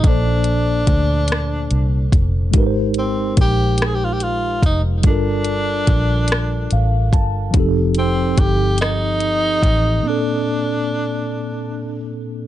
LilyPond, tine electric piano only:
\new Staff \with { instrumentName = "Tine electric piano" } { \time 6/8 \key bes \major \tempo 4. = 48 << { r2. | r2. | r2 f''8 a''8 | r2. |
r2. | } \\ { <bes, bes d' a' c''>2. | <aes ees' g' bes' b' c''>2. | <g d' f' a' bes'>2. | <f c' ees' g' a'>2. |
<bes, bes c' d' a'>2. | } >> }